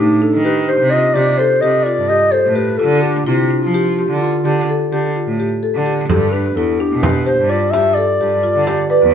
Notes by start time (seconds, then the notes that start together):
0.00 A2 G4
0.22 D4 A4
0.34 D#3
0.44 G4 B4
0.68 G4 C5
0.80 C3
0.90 F4 D#5
1.14 C3 G4 D5
1.38 A4 C5
1.61 C3 G4 D#5
1.83 F4 D5
1.98 G2
2.09 G4 D#5
2.32 A4 C5
2.45 A2
2.55 G4 B4
2.78 D3 F4 A4
3.02 D4 G4
3.26 C3 E4 F4
3.51 D4
3.63 F3
3.74 G4
3.99 G4
4.10 D3
4.21 F4
4.45 D3 G4
4.70 A4
4.92 D3 G4
5.16 F4
5.27 A2
5.40 G4
5.63 A4
5.75 D3
5.86 G4
6.09 G2 G4 A4, frame drum
6.32 D4 B4
6.56 E2 E4 A4
6.80 D4 G4
6.92 B2
7.03 G4 B4, frame drum
7.26 G4 C5
7.39 G2
7.49 F4 D5
7.71 G2 G4 E5, frame drum
7.95 A4 D5
8.21 G2 G4
8.43 F4, frame drum
8.56 D3
8.67 G4, frame drum
8.90 B4 D5
9.02 E2